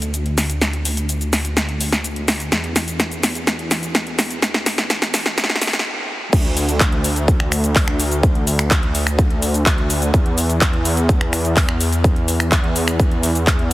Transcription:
Already playing: detuned saw bass D2
0.02 closed hi-hat, cabasa
0.14 closed hi-hat, cabasa
0.26 closed hi-hat
0.38 snare, open hi-hat, cabasa
0.50 closed hi-hat, cabasa
0.62 snare, closed hi-hat, cabasa
0.73 closed hi-hat
0.85 open hi-hat, cabasa
0.97 closed hi-hat, cabasa
1.09 closed hi-hat, cabasa
1.21 closed hi-hat, cabasa
1.33 snare, open hi-hat, cabasa
1.45 closed hi-hat, cabasa
1.57 snare, closed hi-hat, cabasa
1.69 closed hi-hat
1.81 open hi-hat, cabasa
1.92 snare, closed hi-hat, cabasa
2.04 closed hi-hat, cabasa
2.16 closed hi-hat
2.28 snare, open hi-hat, cabasa
2.40 closed hi-hat, cabasa
2.52 detuned saw bass E2, snare, closed hi-hat, cabasa
2.64 closed hi-hat
2.76 snare, open hi-hat, cabasa
2.88 closed hi-hat, cabasa
3.00 snare, closed hi-hat, cabasa
3.12 closed hi-hat, cabasa
3.23 snare, open hi-hat, cabasa
3.35 closed hi-hat, cabasa
3.47 snare, closed hi-hat, cabasa
3.59 closed hi-hat
3.71 snare, open hi-hat, cabasa
3.83 closed hi-hat, cabasa
3.95 snare, closed hi-hat, cabasa
4.07 closed hi-hat
4.19 snare, open hi-hat, cabasa
4.31 closed hi-hat, cabasa
4.42 snare, closed hi-hat, cabasa
4.54 snare, closed hi-hat
4.66 snare, open hi-hat, cabasa
4.78 snare, closed hi-hat, cabasa
4.90 snare, closed hi-hat, cabasa
5.02 snare, closed hi-hat, cabasa
5.14 snare, open hi-hat, cabasa
5.26 snare, closed hi-hat, cabasa
5.38 snare, closed hi-hat, cabasa
5.44 snare
5.50 snare, closed hi-hat
5.56 snare
5.62 snare, open hi-hat, cabasa
5.67 snare
5.73 snare, closed hi-hat, cabasa
5.79 snare
6.33 detuned saw bass D2, kick, closed hi-hat, crash, cabasa
6.45 closed hi-hat
6.57 open hi-hat, cabasa
6.69 closed hi-hat, cabasa
6.80 kick, clap, closed hi-hat, cabasa
6.92 closed hi-hat
7.04 open hi-hat, cabasa
7.16 closed hi-hat, cabasa
7.28 kick, closed hi-hat, cabasa
7.40 finger snap, closed hi-hat
7.52 finger snap, open hi-hat, cabasa
7.64 closed hi-hat, cabasa
7.76 kick, clap, open hi-hat, cabasa
7.88 finger snap
8.00 open hi-hat, cabasa
8.11 closed hi-hat, cabasa
8.23 kick, closed hi-hat, cabasa
8.35 closed hi-hat
8.47 open hi-hat, cabasa
8.59 finger snap, cabasa
8.71 kick, clap, closed hi-hat, cabasa
8.83 closed hi-hat
8.95 open hi-hat, cabasa
9.07 finger snap, cabasa
9.19 kick, closed hi-hat, cabasa
9.30 closed hi-hat
9.42 open hi-hat, cabasa
9.54 closed hi-hat, cabasa
9.66 kick, clap, closed hi-hat, cabasa
9.78 closed hi-hat
9.90 open hi-hat, cabasa
10.02 closed hi-hat, cabasa
10.14 detuned saw bass E2, kick, closed hi-hat, cabasa
10.26 closed hi-hat
10.38 open hi-hat, cabasa
10.50 closed hi-hat, cabasa
10.61 kick, clap, closed hi-hat, cabasa
10.73 closed hi-hat
10.85 open hi-hat, cabasa
10.97 closed hi-hat, cabasa
11.09 kick, closed hi-hat, cabasa
11.21 finger snap, closed hi-hat
11.33 finger snap, open hi-hat, cabasa
11.45 closed hi-hat, cabasa
11.57 kick, clap, open hi-hat, cabasa
11.69 finger snap
11.81 open hi-hat, cabasa
11.92 closed hi-hat, cabasa
12.04 kick, closed hi-hat, cabasa
12.16 closed hi-hat
12.28 open hi-hat, cabasa
12.40 finger snap, closed hi-hat, cabasa
12.52 kick, clap, closed hi-hat, cabasa
12.64 closed hi-hat
12.76 open hi-hat, cabasa
12.88 finger snap, closed hi-hat, cabasa
13.00 kick, closed hi-hat, cabasa
13.12 closed hi-hat
13.23 open hi-hat, cabasa
13.35 closed hi-hat, cabasa
13.47 kick, clap, closed hi-hat, cabasa
13.59 closed hi-hat

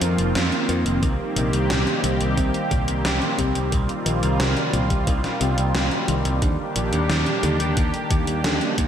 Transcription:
Already playing: analog synth pad D#3 F3 A#3 C4 F4
0.01 picked electric bass F2, synth arpeggio sound F3, closed hi-hat
0.18 picked electric bass F1, closed hi-hat
0.35 picked electric bass F2, synth arpeggio sound F3, snare, closed hi-hat
0.52 closed hi-hat
0.69 picked electric bass F2, synth arpeggio sound A#3, closed hi-hat
0.86 picked electric bass F1, closed hi-hat
1.03 picked electric bass C2, synth arpeggio sound D#3, analog synth pad G3 G4, kick, closed hi-hat
1.36 picked electric bass A#1, synth arpeggio sound C3, closed hi-hat
1.53 picked electric bass C2, closed hi-hat
1.70 picked electric bass C2, synth arpeggio sound A#2, snare, closed hi-hat
1.87 closed hi-hat
2.04 picked electric bass C2, synth arpeggio sound D#3, closed hi-hat
2.21 picked electric bass C2, closed hi-hat
2.37 synth arpeggio sound C3, kick, closed hi-hat
2.54 closed hi-hat
2.71 picked electric bass C2, synth arpeggio sound A#2, kick, closed hi-hat
2.88 picked electric bass C2, closed hi-hat
3.05 picked electric bass C2, synth arpeggio sound D#3, snare, closed hi-hat
3.22 closed hi-hat
3.39 picked electric bass C2, synth arpeggio sound C3, kick, closed hi-hat
3.55 picked electric bass C2, closed hi-hat
3.72 picked electric bass C2, synth arpeggio sound A#2, analog synth pad F4, kick, closed hi-hat
3.89 closed hi-hat
4.06 picked electric bass A#1, synth arpeggio sound D#3, closed hi-hat
4.23 picked electric bass C2, closed hi-hat
4.40 picked electric bass C2, synth arpeggio sound C3, snare, closed hi-hat
4.57 closed hi-hat
4.73 picked electric bass C2, synth arpeggio sound A#2, closed hi-hat
4.90 picked electric bass C2, kick, closed hi-hat
5.07 picked electric bass C2, synth arpeggio sound D#3, kick, closed hi-hat
5.24 snare, closed hi-hat
5.41 picked electric bass C2, synth arpeggio sound C3, closed hi-hat
5.58 picked electric bass C2, closed hi-hat
5.74 picked electric bass C2, synth arpeggio sound A#2, snare, closed hi-hat
5.91 closed hi-hat
6.08 picked electric bass C2, synth arpeggio sound D#3, closed hi-hat
6.25 picked electric bass C2, closed hi-hat
6.42 picked electric bass D#2, synth arpeggio sound D3, analog synth pad D#3 A#3 D4 G4, kick, closed hi-hat
6.76 picked electric bass A#1, synth arpeggio sound A#2, closed hi-hat
6.93 picked electric bass D#2, closed hi-hat
7.09 picked electric bass D#2, synth arpeggio sound D#3, snare, closed hi-hat
7.26 closed hi-hat
7.43 picked electric bass D#2, synth arpeggio sound D3, closed hi-hat
7.60 picked electric bass D#2, closed hi-hat
7.77 picked electric bass D#2, synth arpeggio sound A#2, kick, closed hi-hat
7.94 closed hi-hat
8.11 picked electric bass D#2, synth arpeggio sound D#3, kick, closed hi-hat
8.27 picked electric bass D#2, closed hi-hat
8.44 picked electric bass D#2, synth arpeggio sound D3, snare, closed hi-hat
8.61 closed hi-hat
8.78 picked electric bass D#2, synth arpeggio sound A#2, kick, closed hi-hat

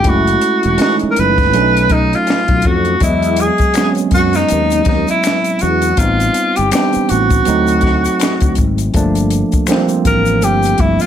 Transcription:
Already playing: tenor saxophone G4
0.04 fretless electric bass F#1, tine electric piano G#3 A3 C#4 E4, kick, closed hi-hat
0.09 tenor saxophone F#4
0.27 closed hi-hat
0.41 closed hi-hat
0.63 fretless electric bass E1, closed hi-hat
0.78 tine electric piano G#3 A3 C#4 D#4, tenor saxophone F#4, snare, closed hi-hat
0.82 finger snap
0.99 muted fretless electric bass stroke, closed hi-hat
1.11 tenor saxophone A#4
1.16 fretless electric bass F#1, tenor saxophone B4, closed hi-hat
1.38 kick, snare, closed hi-hat
1.52 fretless electric bass B1, tine electric piano F#3 A3 C#4 D4, closed hi-hat
1.62 tine electric piano D#4
1.77 closed hi-hat
1.89 tenor saxophone D#4, kick, closed hi-hat
2.13 tenor saxophone F4, closed hi-hat
2.27 finger snap, snare, closed hi-hat
2.48 fretless electric bass B1, kick, closed hi-hat
2.62 kick, closed hi-hat
2.66 fretless electric bass F2, tenor saxophone F#4
2.85 closed hi-hat
3.00 fretless electric bass E2, tine electric piano F#3 G#3 B3 D#5, tenor saxophone E4, kick, closed hi-hat, shaker
3.22 closed hi-hat, shaker
3.36 closed hi-hat, shaker
3.41 tenor saxophone G#4
3.58 muted fretless electric bass stroke, kick, closed hi-hat, shaker
3.74 tine electric piano F#3 G#3 B3 C4, finger snap, snare, closed hi-hat, shaker
3.78 finger snap
3.84 tine electric piano C#4
3.95 closed hi-hat, shaker
4.11 fretless electric bass F#2, tenor saxophone F#4, kick, closed hi-hat, shaker
4.33 tenor saxophone D#4, snare, closed hi-hat, shaker
4.49 fretless electric bass D#2, closed hi-hat, shaker
4.71 closed hi-hat, shaker
4.85 fretless electric bass D#2, tenor saxophone D#4, kick, closed hi-hat
4.90 snare
5.08 tenor saxophone E4, closed hi-hat, shaker
5.24 finger snap, snare, closed hi-hat, shaker
5.27 finger snap
5.44 closed hi-hat, shaker
5.59 fretless electric bass E2, tenor saxophone F#4, closed hi-hat, shaker
5.82 closed hi-hat, shaker
5.97 fretless electric bass A1, tine electric piano G3 B3 C4 D#4, tenor saxophone F4, kick, closed hi-hat, shaker
6.20 closed hi-hat, shaker
6.34 closed hi-hat, shaker
6.56 fretless electric bass G1, tenor saxophone G4, closed hi-hat, shaker
6.72 tine electric piano G3 B3 C4 D4, tenor saxophone G4, finger snap, snare, closed hi-hat, shaker
6.76 finger snap
6.93 muted fretless electric bass stroke, closed hi-hat, shaker
7.09 fretless electric bass A1, tenor saxophone F#4, closed hi-hat, shaker
7.30 kick, closed hi-hat, shaker
7.45 fretless electric bass D2, tine electric piano F#3 A3 C4 D#4, closed hi-hat, shaker
7.67 closed hi-hat, shaker
7.81 kick, closed hi-hat
7.86 snare
8.05 closed hi-hat, shaker
8.20 finger snap, snare, closed hi-hat, shaker
8.23 finger snap
8.40 fretless electric bass D2, kick, closed hi-hat, shaker
8.55 kick, closed hi-hat, shaker
8.60 fretless electric bass G#1
8.78 closed hi-hat, shaker
8.94 fretless electric bass G1, tine electric piano F3 A3 A#3 D4, kick, closed hi-hat, shaker
9.15 closed hi-hat, shaker
9.30 closed hi-hat, shaker
9.52 muted fretless electric bass stroke, kick, closed hi-hat, shaker
9.67 tine electric piano F3 G3 A#3 C4, finger snap, closed hi-hat, shaker
9.72 finger snap, snare
9.89 closed hi-hat, shaker
10.05 fretless electric bass A1, tenor saxophone A#4, kick, closed hi-hat, shaker
10.26 closed hi-hat, shaker
10.42 fretless electric bass G1, tenor saxophone G4, closed hi-hat, shaker
10.63 closed hi-hat, shaker
10.78 fretless electric bass G1, tenor saxophone E4, kick, closed hi-hat
11.00 tenor saxophone F4, closed hi-hat, shaker

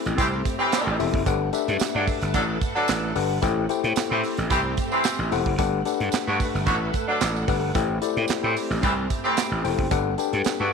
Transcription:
Already playing: string machine A3 C4 G4, tine electric piano C4 E4 G4 A4 G5
0.06 slap bass A1, closed hi-hat, tambourine
0.18 slap bass C2, horn section E3 C4 G4, kick, closed hi-hat, tambourine
0.45 kick, closed hi-hat, tambourine
0.59 horn section E3 C4 G4, tambourine
0.72 snare, clap, closed hi-hat, tambourine
0.87 slap bass A1
0.99 slap bass E1, tine electric piano C4 E4 G4 A4 E5, open hi-hat, tambourine
1.14 slap bass F#1, kick
1.26 slap bass G1, string machine A3 A4 B4 F#5, tine electric piano D4 G4 A4 B4 F#5, kick, closed hi-hat, tambourine
1.53 tine electric piano D4 G4 A4 B4 E5, closed hi-hat, tambourine
1.68 slap bass G2, closed hi-hat, tambourine
1.80 muted slap bass stroke, snare, clap, closed hi-hat, tambourine
1.95 slap bass G2, horn section F#3 D4 A4
2.07 kick, open hi-hat, tambourine
2.21 slap bass G1, closed hi-hat, tambourine
2.34 slap bass A1, horn section F#3 D4 A4, kick, closed hi-hat, tambourine
2.61 kick, closed hi-hat, tambourine
2.76 horn section F#3 D4 A4, tambourine
2.88 slap bass A1, snare, clap, closed hi-hat, tambourine
3.15 slap bass G1, tine electric piano D4 G4 A4 B4 F#5, open hi-hat, tambourine
3.42 slap bass A1, string machine A3 C4 G4, tine electric piano E4 G4 A4 C5 G5, kick, closed hi-hat, tambourine
3.69 tine electric piano E4 G4 A4 C5 G5, closed hi-hat, tambourine
3.84 slap bass A2, closed hi-hat, tambourine
3.96 muted slap bass stroke, snare, clap, closed hi-hat, tambourine
4.10 slap bass A2, horn section E3 C4 G4
4.23 open hi-hat, tambourine
4.37 slap bass A1, closed hi-hat, tambourine
4.50 slap bass C2, horn section E3 C4 G4, kick, closed hi-hat, tambourine
4.77 kick, closed hi-hat, tambourine
4.92 horn section E3 C4 G4, tambourine
5.04 snare, clap, closed hi-hat, tambourine
5.19 slap bass A1, tambourine
5.32 slap bass E1, tine electric piano E4 G4 A4 C5 F#5, open hi-hat, tambourine
5.46 slap bass F#1, kick
5.58 slap bass G1, string machine A3 A4 B4 F#5, tine electric piano D4 G4 A4 B4 F#5, kick, closed hi-hat, tambourine
5.85 tine electric piano D4 G4 A4 B4 F#5, closed hi-hat, tambourine
6.00 slap bass G2, closed hi-hat
6.12 muted slap bass stroke, snare, clap, closed hi-hat, tambourine
6.28 slap bass G2, horn section D3 B3 F#4
6.40 kick, open hi-hat, tambourine
6.55 slap bass G1, tambourine
6.66 slap bass A1, horn section D3 B3 F#4, kick, closed hi-hat, tambourine
6.94 kick, closed hi-hat, tambourine
7.07 horn section F#3 D4 A4
7.21 slap bass A1, snare, clap, closed hi-hat, tambourine
7.36 tambourine
7.48 slap bass G1, tine electric piano D4 G4 A4 B4 F#5, kick, open hi-hat, tambourine
7.75 slap bass A1, string machine A3 C4 G4, tine electric piano E4 G4 A4 C5 G5, kick, closed hi-hat, tambourine
8.02 tine electric piano E4 G4 A4 C5 D5, closed hi-hat, tambourine
8.17 slap bass A2, closed hi-hat
8.28 muted slap bass stroke, snare, clap, closed hi-hat, tambourine
8.43 slap bass A2, horn section E3 C4 G4
8.56 open hi-hat, tambourine
8.70 slap bass A1, tambourine
8.82 slap bass C2, horn section E3 C4 G4, kick, closed hi-hat, tambourine
9.10 kick, closed hi-hat, tambourine
9.24 horn section E3 C4 G4, tambourine
9.37 snare, clap, closed hi-hat, tambourine
9.51 slap bass A1
9.64 slap bass E1, tine electric piano E4 G4 A4 C5 G5, open hi-hat, tambourine
9.79 slap bass F#1, kick
9.91 slap bass G1, string machine G3 D4 A4 B4, tine electric piano D4 G4 A4 B4 F#5, kick, closed hi-hat, tambourine
10.18 tine electric piano D4 G4 A4 B4 G5, closed hi-hat, tambourine
10.33 slap bass G2, closed hi-hat
10.44 muted slap bass stroke, snare, clap, closed hi-hat, tambourine
10.60 slap bass G2, horn section D3 B3 F#4

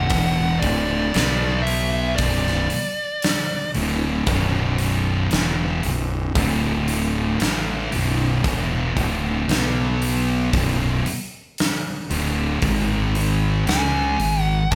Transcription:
Already playing: lead electric guitar F#5
0.09 fingered electric bass E1, distorted electric guitar E2 B2 E3, kick, open hi-hat
0.59 fingered electric bass D1, distorted electric guitar D2 A2 D3, lead electric guitar D5, kick, open hi-hat
1.14 fingered electric bass B1, distorted electric guitar B2 F#3 B3, snare, open hi-hat
1.63 lead electric guitar E5
1.67 open hi-hat
2.16 fingered electric bass B0, distorted electric guitar B1 F#2 B2, lead electric guitar D5, kick, open hi-hat
2.47 snare
2.70 open hi-hat
3.22 snare, open hi-hat
3.74 fingered electric bass D1, distorted electric guitar D2 A2 D3, open hi-hat
4.26 fingered electric bass B0, distorted electric guitar B1 F#2 B2, kick, open hi-hat
4.78 open hi-hat
5.31 fingered electric bass E1, distorted electric guitar E2 B2 E3, snare, open hi-hat
5.83 fingered electric bass B0, distorted electric guitar B1 F#2, open hi-hat
6.35 fingered electric bass D1, distorted electric guitar D2 A2 D3, kick, open hi-hat
6.88 open hi-hat
7.39 fingered electric bass A1, distorted electric guitar A2 E3 A3, snare, open hi-hat
7.92 fingered electric bass B0, distorted electric guitar B1 F#2 B2, open hi-hat
8.44 fingered electric bass E1, distorted electric guitar E2 B2 E3, kick, open hi-hat
8.95 fingered electric bass D1, distorted electric guitar D2 A2 D3, kick, open hi-hat
9.48 fingered electric bass B1, distorted electric guitar B2 F#3 B3, snare, open hi-hat
10.02 open hi-hat
10.53 fingered electric bass B0, distorted electric guitar B1 F#2 B2, kick, open hi-hat
11.06 open hi-hat
11.58 snare, open hi-hat
12.10 fingered electric bass D1, distorted electric guitar D2 A2 D3, open hi-hat
12.62 fingered electric bass G#1, distorted electric guitar G#2 D#3 G#3, kick, open hi-hat
13.15 open hi-hat
13.67 fingered electric bass C#2, distorted electric guitar C#3 G#3 C#4, lead electric guitar G#5, snare, open hi-hat
14.20 fingered electric bass G#1, distorted electric guitar G#2 D#3, open hi-hat
14.43 lead electric guitar F#5
14.72 fingered electric bass B1, distorted electric guitar B2, kick, open hi-hat

